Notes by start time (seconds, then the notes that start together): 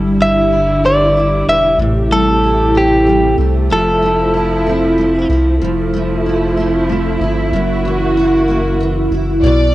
Already playing: G1 D3 G3 E4
0.21 E4 E5
0.52 D5
0.84 B4 D5
1.17 E4
1.47 E1 B4 E5
1.78 A1 A2 C3 A3 G4
2.11 G3 A4
2.43 E4
2.75 C4 G4
3.06 G3
3.38 C2 C4
3.70 F1 F3 E4 A4
4.02 A3
4.34 E4
4.66 C4
4.98 A3
5.29 C2 C4
5.61 F1 F3 A3 E4
5.94 A3
6.26 E4
6.57 C4
6.89 A3
7.20 G1 E4
7.52 F#1 F#2 A#3 F#4
7.85 E3
8.17 E4
8.48 A#3
8.81 E3
9.11 F#1 E4
9.43 B1 B2 D5